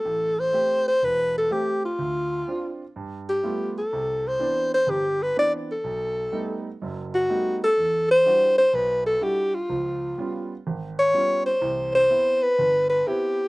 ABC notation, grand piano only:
X:1
M:4/4
L:1/8
Q:"Swing" 1/4=125
K:Ador
V:1 name="Grand piano"
A,,,2 [A,CG] z E,,,2 [A,CG] z | D,,2 [CD=F] z G,,2 [G,A,B,F] z | C,,2 [E,B,CD] z G,,,2 [E,B,CD] z | B,,,2 [G,A,B,^D] z [F,,,F,,]2 [G,A,B,D] z |
E,,2 [G,DEF] z B,,,2 [G,DEF] z | [^C,,^E,]2 [G,B,^C^E] z ^G,,,2 [=G,B,CE] z | [C,,E,]2 [B,CE] z G,,,2 [B,CE] z |]